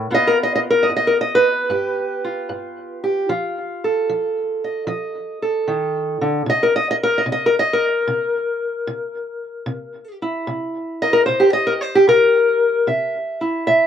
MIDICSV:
0, 0, Header, 1, 2, 480
1, 0, Start_track
1, 0, Tempo, 795756
1, 72, Time_signature, 4, 2, 24, 8
1, 8366, End_track
2, 0, Start_track
2, 0, Title_t, "Steel-string acoustic guitar"
2, 0, Program_c, 0, 25
2, 0, Note_on_c, 0, 45, 63
2, 0, Note_on_c, 0, 76, 48
2, 61, Note_off_c, 0, 45, 0
2, 61, Note_off_c, 0, 76, 0
2, 63, Note_on_c, 0, 43, 70
2, 66, Note_on_c, 0, 59, 47
2, 72, Note_on_c, 0, 65, 50
2, 87, Note_on_c, 0, 75, 110
2, 165, Note_on_c, 0, 70, 97
2, 188, Note_off_c, 0, 75, 0
2, 224, Note_off_c, 0, 70, 0
2, 261, Note_on_c, 0, 75, 93
2, 327, Note_off_c, 0, 75, 0
2, 335, Note_on_c, 0, 75, 90
2, 360, Note_off_c, 0, 75, 0
2, 425, Note_on_c, 0, 70, 92
2, 500, Note_on_c, 0, 75, 83
2, 516, Note_off_c, 0, 43, 0
2, 517, Note_off_c, 0, 70, 0
2, 539, Note_on_c, 0, 43, 76
2, 551, Note_off_c, 0, 75, 0
2, 582, Note_on_c, 0, 75, 87
2, 646, Note_on_c, 0, 70, 86
2, 675, Note_off_c, 0, 75, 0
2, 704, Note_off_c, 0, 70, 0
2, 729, Note_on_c, 0, 75, 96
2, 814, Note_on_c, 0, 71, 105
2, 885, Note_off_c, 0, 75, 0
2, 993, Note_off_c, 0, 43, 0
2, 1024, Note_on_c, 0, 43, 76
2, 1030, Note_on_c, 0, 67, 54
2, 1347, Note_off_c, 0, 65, 0
2, 1354, Note_on_c, 0, 65, 48
2, 1475, Note_off_c, 0, 43, 0
2, 1503, Note_on_c, 0, 43, 76
2, 1824, Note_off_c, 0, 67, 0
2, 1831, Note_on_c, 0, 67, 50
2, 1954, Note_off_c, 0, 43, 0
2, 1957, Note_off_c, 0, 71, 0
2, 1966, Note_off_c, 0, 59, 0
2, 1969, Note_off_c, 0, 65, 0
2, 1985, Note_on_c, 0, 53, 75
2, 1987, Note_off_c, 0, 67, 0
2, 1987, Note_on_c, 0, 65, 55
2, 2318, Note_on_c, 0, 69, 52
2, 2436, Note_off_c, 0, 53, 0
2, 2470, Note_on_c, 0, 53, 74
2, 2801, Note_on_c, 0, 75, 45
2, 2918, Note_off_c, 0, 53, 0
2, 2935, Note_off_c, 0, 75, 0
2, 2937, Note_on_c, 0, 53, 80
2, 2943, Note_on_c, 0, 75, 50
2, 3264, Note_off_c, 0, 69, 0
2, 3272, Note_on_c, 0, 69, 49
2, 3391, Note_off_c, 0, 53, 0
2, 3423, Note_on_c, 0, 51, 64
2, 3746, Note_off_c, 0, 51, 0
2, 3748, Note_on_c, 0, 50, 66
2, 3887, Note_off_c, 0, 75, 0
2, 3888, Note_off_c, 0, 65, 0
2, 3888, Note_off_c, 0, 69, 0
2, 3896, Note_off_c, 0, 50, 0
2, 3898, Note_on_c, 0, 48, 81
2, 3918, Note_on_c, 0, 75, 102
2, 3999, Note_on_c, 0, 70, 94
2, 4022, Note_off_c, 0, 75, 0
2, 4059, Note_off_c, 0, 70, 0
2, 4077, Note_on_c, 0, 75, 101
2, 4159, Note_off_c, 0, 75, 0
2, 4166, Note_on_c, 0, 75, 99
2, 4194, Note_off_c, 0, 75, 0
2, 4243, Note_on_c, 0, 70, 103
2, 4330, Note_on_c, 0, 75, 79
2, 4344, Note_off_c, 0, 70, 0
2, 4352, Note_off_c, 0, 48, 0
2, 4379, Note_on_c, 0, 48, 75
2, 4385, Note_off_c, 0, 75, 0
2, 4416, Note_on_c, 0, 75, 92
2, 4500, Note_on_c, 0, 70, 91
2, 4511, Note_off_c, 0, 75, 0
2, 4550, Note_off_c, 0, 70, 0
2, 4580, Note_on_c, 0, 75, 98
2, 4664, Note_on_c, 0, 70, 96
2, 4730, Note_off_c, 0, 75, 0
2, 4833, Note_off_c, 0, 48, 0
2, 4871, Note_on_c, 0, 48, 83
2, 5319, Note_off_c, 0, 48, 0
2, 5352, Note_on_c, 0, 48, 79
2, 5801, Note_off_c, 0, 48, 0
2, 5827, Note_on_c, 0, 48, 79
2, 6132, Note_off_c, 0, 70, 0
2, 6166, Note_on_c, 0, 64, 52
2, 6279, Note_off_c, 0, 48, 0
2, 6317, Note_on_c, 0, 48, 74
2, 6647, Note_on_c, 0, 75, 98
2, 6654, Note_on_c, 0, 70, 49
2, 6706, Note_off_c, 0, 70, 0
2, 6714, Note_on_c, 0, 70, 97
2, 6748, Note_off_c, 0, 75, 0
2, 6764, Note_off_c, 0, 48, 0
2, 6779, Note_off_c, 0, 70, 0
2, 6791, Note_on_c, 0, 72, 90
2, 6806, Note_on_c, 0, 48, 79
2, 6875, Note_on_c, 0, 67, 84
2, 6900, Note_off_c, 0, 72, 0
2, 6940, Note_off_c, 0, 67, 0
2, 6956, Note_on_c, 0, 75, 96
2, 7038, Note_on_c, 0, 70, 94
2, 7072, Note_off_c, 0, 70, 0
2, 7121, Note_off_c, 0, 75, 0
2, 7123, Note_on_c, 0, 72, 97
2, 7211, Note_on_c, 0, 67, 99
2, 7227, Note_off_c, 0, 72, 0
2, 7249, Note_off_c, 0, 48, 0
2, 7268, Note_off_c, 0, 67, 0
2, 7284, Note_on_c, 0, 48, 79
2, 7291, Note_on_c, 0, 70, 110
2, 7729, Note_off_c, 0, 48, 0
2, 7741, Note_off_c, 0, 64, 0
2, 7763, Note_off_c, 0, 70, 0
2, 7764, Note_on_c, 0, 48, 70
2, 7767, Note_on_c, 0, 76, 47
2, 8089, Note_on_c, 0, 64, 44
2, 8210, Note_off_c, 0, 48, 0
2, 8243, Note_off_c, 0, 76, 0
2, 8246, Note_on_c, 0, 76, 93
2, 8251, Note_on_c, 0, 48, 68
2, 8366, Note_off_c, 0, 48, 0
2, 8366, Note_off_c, 0, 64, 0
2, 8366, Note_off_c, 0, 76, 0
2, 8366, End_track
0, 0, End_of_file